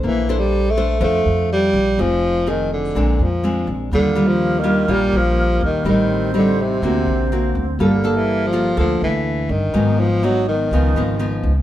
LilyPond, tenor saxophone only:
\new Staff \with { instrumentName = "Tenor saxophone" } { \clef bass \time 4/4 \key bes \lydian \tempo 4 = 124 \tuplet 3/2 { e4 g8~ g8 a4 } a4 g4 | f4 ees8 d4 f4 r8 | \tuplet 3/2 { d4 f8~ f8 ees4 } g8 f4 ees8 | ees4 d8 c2 r8 |
\tuplet 3/2 { d4 e8~ e8 f4 } f8 e4 ees8~ | ees8 f8 fis8 dis2 r8 | }